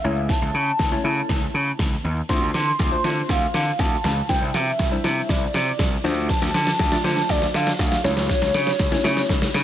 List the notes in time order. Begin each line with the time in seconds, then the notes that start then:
Already playing: E5
0.04 C#2 A3 C#4 E4 C#5
0.17 closed hi-hat
0.29 A5, kick, snare, closed hi-hat
0.42 C#2, closed hi-hat
0.54 C#3
0.67 closed hi-hat
0.79 C#2, kick, snare, closed hi-hat
0.92 A3 C#4 E4 C#5, closed hi-hat
1.04 C#3 A3 C#4 E4 A4
1.17 closed hi-hat
1.29 C#2, kick, snare, closed hi-hat
1.42 closed hi-hat
1.54 C#3
1.67 closed hi-hat
1.79 C#2, kick, snare, closed hi-hat
1.92 closed hi-hat
2.04 D#2
2.17 closed hi-hat
2.29 D2 A3 D4 F4 C5 C6, kick, snare, closed hi-hat
2.42 D2, closed hi-hat
2.54 D3, snare, open hi-hat
2.67 closed hi-hat
2.79 D2, kick, snare, closed hi-hat
2.92 A3 D4 F4 C5, closed hi-hat
3.04 D3 A3 D4 F4 C5, snare, open hi-hat
3.17 closed hi-hat
3.29 D2 F5, kick, snare, closed hi-hat
3.42 closed hi-hat
3.54 D3, snare, open hi-hat
3.66 closed hi-hat
3.79 D2 A5, kick, snare, closed hi-hat
3.92 closed hi-hat
4.04 C#2, snare, open hi-hat
4.17 closed hi-hat
4.29 C2 G3 D4 E4 C5 G5, kick, snare, closed hi-hat
4.41 C2, closed hi-hat
4.54 C3 E5, snare, open hi-hat
4.67 closed hi-hat
4.79 C2, kick, snare, closed hi-hat
4.92 G3 D4 E4 C5, closed hi-hat
5.04 C3 G3 D4 E4 C5, snare, open hi-hat
5.17 closed hi-hat
5.29 C2 D5, kick, snare, closed hi-hat
5.42 closed hi-hat
5.54 C3, snare, open hi-hat
5.67 closed hi-hat
5.79 C2, kick, snare, closed hi-hat
5.92 closed hi-hat
6.04 D2 A3 D4 F4 C5, snare, open hi-hat
6.17 closed hi-hat
6.29 A5, kick, snare, closed hi-hat
6.42 D2, snare, closed hi-hat
6.54 D3, snare, open hi-hat
6.67 snare, closed hi-hat
6.79 D2, kick, snare, closed hi-hat
6.92 A3 D4 F4 D5, snare, closed hi-hat
7.04 D3 A3 D4 F4 C5, snare, open hi-hat
7.17 snare, closed hi-hat
7.29 D2 D5, kick, snare, closed hi-hat
7.42 snare, closed hi-hat
7.54 D3 F5, snare, open hi-hat
7.67 snare, closed hi-hat
7.79 D2, kick, snare, closed hi-hat
7.92 snare, closed hi-hat
8.04 C#2 A3 C#4 E4 C#5, snare, open hi-hat
8.17 C#5, snare, closed hi-hat
8.29 kick, snare, closed hi-hat, shaker
8.42 C#2, snare, closed hi-hat, shaker
8.54 C#3, snare, open hi-hat, shaker
8.67 snare, closed hi-hat, shaker
8.79 C#2, kick, snare, closed hi-hat, shaker
8.91 A3 C#4 E4 C#5, snare, closed hi-hat, shaker
9.04 C#3 A3 C#4 E4 C#5, snare, open hi-hat, shaker
9.17 snare, closed hi-hat, shaker
9.29 C#2, kick, snare, closed hi-hat, shaker
9.42 snare, closed hi-hat, shaker
9.54 C#3, snare, open hi-hat, shaker